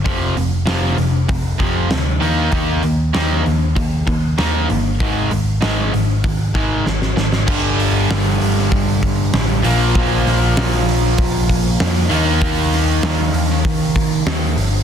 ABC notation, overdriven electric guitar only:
X:1
M:4/4
L:1/8
Q:1/4=97
K:Eb
V:1 name="Overdriven electric guitar" clef=bass
[F,,C,F,] [F,,C,] [F,,C,F,] [F,,C,] [F,,C,] [F,,C,F,] [F,,C,] [E,B,E] | [E,B,E] [E,B,] [E,B,E] [E,B,] [E,B,] [E,B,] [E,B,E] [E,B,] | [A,,E,A,] [A,,E,] [A,,E,A,] [A,,E,] [A,,E,] [A,,E,A,] [A,,E,] [A,,E,] | [G,,D,G,]6- [G,,D,G,] [B,,F,B,]- |
[B,,F,B,]6- [B,,F,B,] [E,B,E]- | [E,B,E]6- [E,B,E] z |]